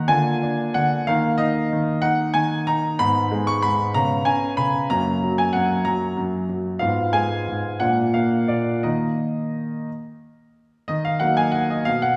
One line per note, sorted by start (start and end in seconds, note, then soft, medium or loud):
0.00 0.11 D#3 medium
0.00 0.09 A#3 soft
0.00 0.11 D#4 soft
0.00 0.11 F#5 medium
0.00 0.11 A#5 medium
0.08 0.73 D3 medium
0.08 1.03 A#3 soft
0.08 1.03 F4 soft
0.08 0.74 G#5 medium
0.42 1.05 D4 medium
0.74 1.06 D3 soft
0.74 1.07 F#5 medium
1.07 1.71 D#3 medium
1.07 2.96 A#3 soft
1.07 1.37 D#4 soft
1.07 1.39 F5 medium
1.38 2.01 D#4 medium
1.38 2.02 D#5 medium
1.72 2.33 D#3 medium
2.02 2.66 D#4 medium
2.02 2.34 F#5 medium
2.34 2.97 D#3 medium
2.34 2.67 G#5 medium
2.67 2.98 D#4 medium
2.67 2.99 A#5 medium
2.99 3.62 G#2 medium
2.99 3.92 B3 soft
2.99 3.92 D#4 soft
2.99 3.48 B5 loud
3.31 3.94 G#3 medium
3.47 3.63 C#6 medium
3.62 3.95 G#2 medium
3.62 3.95 B5 medium
3.94 4.56 C#3 medium
3.94 4.87 B3 soft
3.94 4.25 C#4 soft
3.94 4.27 A#5 medium
4.25 4.89 C#4 soft
4.25 4.58 G#5 medium
4.57 4.89 C#3 soft
4.57 4.90 B5 medium
4.90 5.52 F#2 medium
4.90 6.77 A#3 soft
4.90 6.77 C#4 soft
4.90 5.38 A#5 medium
5.23 5.84 F#3 medium
5.38 5.54 G#5 medium
5.53 6.15 F#2 medium
5.53 5.85 F#5 medium
5.85 6.48 F#3 medium
5.85 6.17 A#5 medium
6.17 6.79 F#2 soft
6.49 6.80 F#3 soft
6.79 7.46 G#2 medium
6.79 7.76 B3 soft
6.79 7.76 F4 soft
6.79 7.13 F5 medium
7.13 7.78 G#3 soft
7.13 7.80 G#5 medium
7.47 7.80 G#2 soft
7.80 8.48 A#2 medium
7.80 8.13 A#3 soft
7.80 8.80 D4 soft
7.80 8.14 F#5 medium
8.14 8.82 A#3 soft
8.14 8.49 F5 medium
8.48 8.83 A#2 soft
8.48 8.84 D5 medium
8.83 9.56 D#3 soft
8.83 9.67 A#3 soft
8.83 9.67 D#4 soft
8.83 9.87 D#5 medium
10.88 11.21 D#3 soft
10.88 11.05 D#5 medium
11.05 11.21 F5 medium
11.20 11.82 F#3 soft
11.20 11.82 A#3 soft
11.20 11.82 D#4 soft
11.20 11.37 F#5 medium
11.37 11.54 G#5 medium
11.52 11.69 F#5 medium
11.70 11.87 D#5 medium
11.85 12.16 B2 medium
11.85 12.02 F5 medium
12.02 12.16 F#5 medium